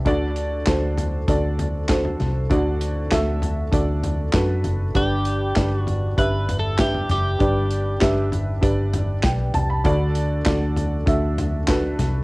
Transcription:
0.05 0.63 D2 medium
0.05 0.94 D3 medium
0.05 0.56 D4 medium
0.05 0.57 F#4 medium
0.05 0.57 A4 medium
0.05 0.57 D5 loud
0.05 kick medium
0.05 closed hi-hat medium
0.36 closed hi-hat medium
0.66 1.24 D2 medium
0.66 1.17 D4 medium
0.66 1.18 F#4 medium
0.66 1.18 A4 medium
0.66 1.18 C5 medium
0.66 kick medium
0.66 snare medium
0.66 clap medium
0.66 closed hi-hat medium
0.98 closed hi-hat medium
0.98 floor tom medium
1.28 2.16 D2 medium
1.28 1.79 D4 medium
1.28 1.79 F#4 medium
1.28 1.79 A4 medium
1.28 1.80 D5 medium
1.28 kick loud
1.28 closed hi-hat medium
1.59 closed hi-hat medium
1.59 floor tom medium
1.88 2.40 D4 medium
1.88 2.40 F#4 medium
1.88 2.40 A4 medium
1.88 2.40 C5 medium
1.88 kick medium
1.88 snare loud
1.88 clap medium
1.88 closed hi-hat medium
2.05 floor tom soft
2.20 2.49 C2 medium
2.20 snare soft
2.20 closed hi-hat medium
2.20 floor tom medium
2.49 3.08 D2 medium
2.49 3.38 D3 medium
2.49 3.01 D4 medium
2.49 3.01 F#4 medium
2.49 3.01 A4 medium
2.49 3.02 D5 medium
2.49 kick medium
2.49 closed hi-hat medium
2.81 closed hi-hat medium
3.11 3.69 D2 loud
3.11 3.62 D4 medium
3.11 3.62 F#4 medium
3.11 3.63 A4 medium
3.11 3.63 E5 medium
3.11 kick medium
3.11 snare medium
3.11 clap medium
3.11 closed hi-hat medium
3.42 closed hi-hat medium
3.42 floor tom medium
3.72 4.30 D2 medium
3.72 4.23 D4 medium
3.72 4.23 F#4 medium
3.72 4.24 A4 medium
3.72 4.24 D5 medium
3.72 kick loud
3.72 closed hi-hat medium
4.04 closed hi-hat medium
4.04 floor tom medium
4.33 4.63 F#2 medium
4.33 4.84 D4 medium
4.33 4.85 F#4 medium
4.33 4.85 A4 medium
4.33 4.85 B4 medium
4.33 kick medium
4.33 snare loud
4.33 clap medium
4.33 closed hi-hat medium
4.64 4.93 F#1 medium
4.64 closed hi-hat medium
4.64 floor tom medium
4.95 5.53 G1 medium
4.95 5.83 G2 medium
4.95 5.46 D4 medium
4.95 5.46 G4 medium
4.95 5.79 G4 medium
4.95 5.46 B4 medium
4.95 5.46 D5 medium
4.95 kick medium
4.95 closed hi-hat medium
5.25 closed hi-hat medium
5.56 6.14 G1 medium
5.56 6.07 D4 medium
5.56 6.07 G4 medium
5.56 6.08 B4 medium
5.56 6.08 D5 medium
5.56 kick medium
5.56 snare loud
5.56 clap medium
5.56 closed hi-hat medium
5.79 6.18 F#4 medium
5.87 closed hi-hat medium
5.87 floor tom medium
6.17 7.06 G1 medium
6.17 6.68 D4 medium
6.17 6.68 G4 medium
6.17 6.68 B4 medium
6.17 6.59 B4 medium
6.17 6.69 E5 medium
6.17 kick loud
6.17 closed hi-hat medium
6.49 closed hi-hat medium
6.49 floor tom medium
6.59 6.80 A4 medium
6.78 7.29 D4 medium
6.78 7.30 G4 medium
6.78 7.10 G4 medium
6.78 7.30 B4 medium
6.78 7.30 E5 medium
6.78 kick loud
6.78 snare loud
6.78 clap medium
6.78 closed hi-hat medium
6.94 floor tom medium
7.09 7.38 F#1 medium
7.09 8.29 G4 medium
7.09 snare soft
7.09 closed hi-hat medium
7.09 floor tom medium
7.39 7.98 G1 medium
7.39 8.28 G2 medium
7.39 7.90 D4 medium
7.39 7.91 G4 medium
7.39 7.91 B4 medium
7.39 7.91 D5 medium
7.39 kick medium
7.39 closed hi-hat medium
7.70 closed hi-hat medium
8.00 8.59 G1 medium
8.00 8.51 D4 medium
8.00 8.52 G4 medium
8.00 8.52 B4 medium
8.00 8.52 E5 medium
8.00 kick medium
8.00 snare medium
8.00 clap medium
8.00 closed hi-hat medium
8.32 closed hi-hat medium
8.32 floor tom medium
8.61 9.20 G1 medium
8.61 9.13 D4 medium
8.61 9.13 G4 medium
8.61 9.13 B4 medium
8.61 9.13 D5 medium
8.61 kick loud
8.61 closed hi-hat medium
8.93 closed hi-hat medium
8.93 floor tom medium
9.23 9.52 B1 medium
9.23 9.53 G5 medium
9.23 kick loud
9.23 snare loud
9.23 clap medium
9.23 closed hi-hat medium
9.54 9.83 C2 medium
9.54 9.69 A5 medium
9.54 closed hi-hat medium
9.54 floor tom medium
9.70 9.99 B5 medium
9.84 10.42 D2 medium
9.84 10.73 D3 medium
9.84 10.35 D4 medium
9.84 10.35 F#4 medium
9.84 10.36 A4 medium
9.84 10.36 D5 medium
9.84 kick loud
9.84 closed hi-hat medium
10.15 closed hi-hat medium
10.45 11.03 D2 loud
10.45 10.96 D4 medium
10.45 10.97 F#4 medium
10.45 10.97 A4 medium
10.45 10.97 D5 medium
10.45 kick loud
10.45 snare loud
10.45 clap medium
10.45 closed hi-hat medium
10.77 closed hi-hat medium
10.77 floor tom medium
11.06 11.95 D2 medium
11.06 11.57 D4 medium
11.06 11.58 F#4 medium
11.06 11.58 A4 medium
11.06 11.58 E5 medium
11.06 kick loud
11.06 closed hi-hat medium
11.38 closed hi-hat medium
11.38 floor tom medium
11.67 12.18 D4 medium
11.67 12.19 F#4 medium
11.67 12.19 A4 medium
11.67 12.19 B4 medium
11.67 kick medium
11.67 snare medium
11.67 clap medium
11.67 closed hi-hat medium
11.99 12.24 C2 medium
11.99 snare soft
11.99 closed hi-hat medium
11.99 floor tom medium

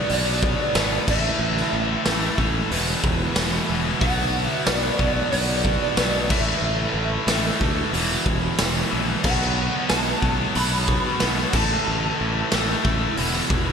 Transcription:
0.00 0.75 B2 medium
0.00 0.74 F#3 medium
0.00 0.73 B3 loud
0.00 1.06 B3 medium
0.00 1.06 F#4 medium
0.00 0.12 D5 medium
0.00 1.06 D5 medium
0.09 0.54 B1 medium
0.09 1.06 B2 medium
0.09 1.07 F#3 medium
0.09 1.07 B3 medium
0.09 1.13 D5 medium
0.09 open hi-hat medium
0.43 kick loud
0.75 0.97 G#1 loud
0.75 1.06 B2 medium
0.75 1.07 F#3 medium
0.75 1.07 B3 loud
0.75 snare loud
0.75 open hi-hat medium
1.06 1.30 A1 medium
1.06 2.04 A2 loud
1.06 2.05 E3 loud
1.06 2.69 A3 medium
1.06 2.05 A3 loud
1.06 3.98 E4 medium
1.06 3.98 B4 medium
1.06 kick loud
1.06 crash loud
1.10 2.36 E5 medium
1.39 1.62 A1 loud
1.57 snare soft
1.73 1.95 A1 loud
2.06 2.28 A1 medium
2.06 2.69 A2 medium
2.06 2.70 E3 medium
2.06 2.70 A3 medium
2.06 snare loud
2.06 open hi-hat medium
2.38 2.60 A1 medium
2.38 2.70 A2 medium
2.38 2.70 E3 medium
2.38 2.69 A3 medium
2.38 kick medium
2.70 2.93 E1 medium
2.70 3.66 E2 loud
2.70 3.67 B2 loud
2.70 3.67 E3 loud
2.70 4.01 F#5 medium
2.70 open hi-hat medium
3.04 3.26 E1 medium
3.04 kick loud
3.36 3.59 E1 medium
3.36 snare loud
3.36 open hi-hat medium
3.68 3.92 E1 medium
3.68 4.00 E2 medium
3.68 3.99 B2 medium
3.68 3.99 E3 medium
4.00 4.45 B1 loud
4.00 4.97 B2 loud
4.00 4.98 F#3 medium
4.00 4.97 B3 loud
4.00 6.29 B3 medium
4.00 6.29 F#4 medium
4.00 6.29 D5 medium
4.00 4.48 F#5 loud
4.00 kick loud
4.00 open hi-hat medium
4.48 4.63 E5 loud
4.66 4.89 B1 loud
4.66 5.30 D5 medium
4.66 snare loud
4.66 open hi-hat medium
4.98 5.22 B1 medium
4.98 5.95 B2 medium
4.98 5.96 F#3 medium
4.98 5.95 B3 medium
4.98 kick loud
5.31 5.77 B1 medium
5.31 6.28 B2 medium
5.31 6.29 F#3 medium
5.31 6.29 B3 loud
5.31 6.33 D5 medium
5.31 open hi-hat medium
5.65 kick medium
5.96 6.30 B1 loud
5.96 6.28 B2 medium
5.96 6.28 F#3 medium
5.96 6.29 B3 loud
5.96 snare loud
5.96 open hi-hat medium
6.29 6.52 A1 medium
6.29 7.26 A2 loud
6.29 7.26 E3 loud
6.29 7.27 A3 loud
6.29 7.93 A3 medium
6.29 9.22 E4 medium
6.29 7.57 E5 medium
6.29 kick loud
6.29 crash loud
6.33 9.23 B4 medium
6.62 6.84 A1 loud
6.94 7.16 A1 medium
7.27 7.49 A1 medium
7.27 7.91 A2 medium
7.27 7.92 E3 medium
7.27 7.93 A3 medium
7.27 snare loud
7.27 open hi-hat medium
7.61 7.83 D2 medium
7.61 7.93 A2 medium
7.61 7.92 E3 medium
7.61 7.92 A3 medium
7.61 kick medium
7.92 8.15 E1 medium
7.92 8.89 E2 loud
7.92 8.90 B2 loud
7.92 8.90 E3 loud
7.92 9.23 F#5 medium
7.92 open hi-hat medium
8.26 8.48 E1 medium
8.26 kick medium
8.59 8.82 E1 loud
8.59 snare loud
8.59 open hi-hat medium
8.91 9.14 A#1 medium
8.91 9.24 E2 medium
8.91 9.23 B2 medium
8.91 9.22 E3 medium
9.24 9.69 B1 medium
9.24 10.21 B2 medium
9.24 10.21 F#3 loud
9.24 11.52 B3 medium
9.24 10.21 B3 loud
9.24 11.51 F#4 medium
9.24 11.52 C#5 medium
9.24 9.86 F#5 medium
9.24 kick loud
9.24 crash loud
9.41 snare soft
9.89 10.13 B1 loud
9.89 10.51 A5 medium
9.89 snare loud
9.89 open hi-hat medium
10.22 10.44 B1 medium
10.22 11.19 B2 medium
10.22 11.19 F#3 medium
10.22 11.19 B3 medium
10.22 kick medium
10.55 10.99 B1 medium
10.55 11.51 B2 medium
10.55 11.52 F#3 medium
10.55 11.53 B3 medium
10.55 11.50 B5 loud
10.55 open hi-hat medium
10.88 kick loud
11.20 11.44 B1 loud
11.20 11.51 B2 medium
11.20 11.52 F#3 loud
11.20 11.52 B3 medium
11.20 snare loud
11.20 open hi-hat medium
11.53 11.75 A1 medium
11.53 12.50 A2 loud
11.53 12.50 E3 loud
11.53 13.16 A3 medium
11.53 12.51 A3 loud
11.53 13.72 E4 medium
11.53 13.15 B4 medium
11.53 12.16 A5 medium
11.53 kick loud
11.53 crash loud
11.88 12.09 A1 loud
12.21 12.42 A1 medium
12.52 12.75 A1 loud
12.52 13.15 A2 medium
12.52 13.16 E3 medium
12.52 13.16 A3 loud
12.52 snare loud
12.52 open hi-hat medium
12.83 13.07 A1 medium
12.83 13.16 A2 medium
12.83 13.15 E3 medium
12.83 13.15 A3 medium
12.83 kick medium
13.16 13.40 E1 medium
13.16 13.72 E2 medium
13.16 13.72 B2 loud
13.16 13.72 E3 loud
13.16 13.72 B4 medium
13.16 13.72 F#5 medium
13.16 open hi-hat medium
13.50 13.72 E1 loud
13.50 kick loud

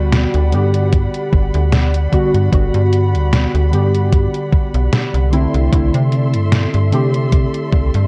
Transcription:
0.00 0.27 D2 medium
0.00 0.47 D3 medium
0.00 0.48 G3 medium
0.00 5.28 G3 medium
0.00 0.48 B3 medium
0.00 0.49 F#4 loud
0.00 8.07 D5 medium
0.00 5.29 F#5 medium
0.00 5.29 B5 medium
0.12 snare loud
0.12 closed hi-hat medium
0.34 0.54 D2 medium
0.34 closed hi-hat soft
0.51 1.09 G2 medium
0.51 2.07 D3 medium
0.51 2.08 G3 medium
0.51 2.08 B3 medium
0.51 2.09 G4 medium
0.51 closed hi-hat medium
0.74 closed hi-hat soft
0.93 kick loud
0.93 closed hi-hat medium
1.14 closed hi-hat soft
1.33 1.51 G1 medium
1.33 kick loud
1.54 2.08 D2 loud
1.54 closed hi-hat soft
1.72 snare loud
1.72 closed hi-hat medium
1.94 closed hi-hat soft
2.12 2.48 D3 medium
2.12 2.48 G3 medium
2.12 2.48 B3 medium
2.12 2.49 F#4 loud
2.12 kick medium
2.12 closed hi-hat medium
2.34 2.50 G2 medium
2.34 closed hi-hat soft
2.51 2.71 G1 loud
2.51 3.67 D3 medium
2.51 3.68 G3 medium
2.51 3.68 B3 medium
2.51 3.69 F#4 medium
2.51 kick loud
2.51 closed hi-hat medium
2.74 3.16 G2 loud
2.74 closed hi-hat soft
2.93 closed hi-hat medium
3.14 3.47 D2 medium
3.14 closed hi-hat soft
3.33 snare loud
3.33 closed hi-hat medium
3.54 3.74 D2 medium
3.54 closed hi-hat soft
3.71 4.29 G2 medium
3.71 5.27 D3 medium
3.71 5.28 G3 medium
3.71 5.28 B3 medium
3.71 5.29 G4 medium
3.71 closed hi-hat medium
3.94 closed hi-hat soft
4.12 kick loud
4.12 closed hi-hat medium
4.34 closed hi-hat soft
4.52 kick loud
4.74 4.90 B1 loud
4.74 closed hi-hat soft
4.93 snare loud
4.93 closed hi-hat medium
5.14 5.47 C2 loud
5.14 closed hi-hat soft
5.32 5.68 D3 medium
5.32 5.68 A3 medium
5.32 5.68 C4 medium
5.32 5.68 E4 loud
5.32 8.07 A4 medium
5.32 8.07 E5 medium
5.32 8.07 C6 medium
5.32 closed hi-hat medium
5.54 5.69 C2 loud
5.54 closed hi-hat soft
5.71 5.91 C2 loud
5.71 6.87 D3 medium
5.71 6.88 A3 medium
5.71 6.88 C4 medium
5.71 6.89 E4 loud
5.71 kick loud
5.71 closed hi-hat medium
5.94 6.36 C3 loud
5.94 closed hi-hat soft
6.12 closed hi-hat medium
6.34 6.67 G2 medium
6.34 closed hi-hat soft
6.52 snare loud
6.52 closed hi-hat medium
6.74 6.94 G2 medium
6.74 closed hi-hat soft
6.91 7.49 C3 medium
6.91 8.07 D3 medium
6.91 8.07 A3 medium
6.91 8.07 C4 medium
6.91 8.07 G4 medium
6.91 closed hi-hat medium
7.14 closed hi-hat soft
7.32 kick loud
7.32 closed hi-hat medium
7.54 closed hi-hat soft
7.72 7.91 C2 medium
7.72 kick loud
7.94 8.07 G2 loud
7.94 closed hi-hat soft

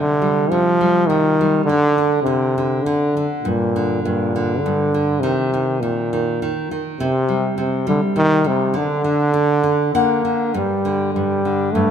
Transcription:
0.00 0.50 C3 medium
0.00 0.52 D3 medium
0.22 0.80 G3 medium
0.51 1.08 C3 soft
0.51 1.08 F3 loud
0.81 1.40 G3 medium
1.07 1.66 C3 medium
1.07 1.64 D#3 loud
1.41 1.68 G3 medium
1.65 2.21 D3 loud
1.69 1.97 D3 medium
1.98 2.25 D3 soft
2.23 2.85 C3 medium
2.23 2.56 D3 soft
2.58 2.85 D3 soft
2.83 3.29 D3 medium
2.83 3.16 D3 medium
3.17 3.45 D3 medium
3.43 4.04 G2 medium
3.43 3.99 A#2 medium
3.76 4.34 D3 soft
4.03 4.65 G2 medium
4.03 4.62 A#2 medium
4.36 4.93 D3 medium
4.60 5.22 D3 medium
4.66 5.22 G2 medium
4.94 5.22 D3 soft
5.20 5.82 C3 medium
5.20 5.52 D#3 medium
5.54 5.81 D#3 soft
5.81 6.69 A#2 medium
5.81 6.12 D#3 soft
6.13 6.41 D#3 medium
6.42 6.70 D#3 medium
6.71 6.99 D#3 soft
7.00 7.54 C3 medium
7.00 7.57 C3 medium
7.29 7.86 G3 soft
7.58 8.15 C3 medium
7.58 7.86 C3 medium
7.87 8.01 D3 medium
7.87 8.43 G3 medium
8.16 8.73 C3 medium
8.16 8.49 D#3 loud
8.44 8.78 C3 medium
8.44 8.73 G3 medium
8.74 9.03 D3 medium
8.74 9.94 D3 medium
9.04 9.32 D3 soft
9.34 9.62 D3 medium
9.64 9.94 D3 soft
9.95 10.24 D3 medium
9.95 10.56 A#3 medium
9.95 10.51 F#5 medium
10.25 10.54 D3 soft
10.54 11.15 G2 medium
10.54 11.13 G3 medium
10.85 11.44 D3 soft
11.13 11.74 G2 soft
11.13 11.74 G3 medium
11.45 11.91 D3 soft
11.72 11.91 G2 medium
11.72 11.91 A3 medium

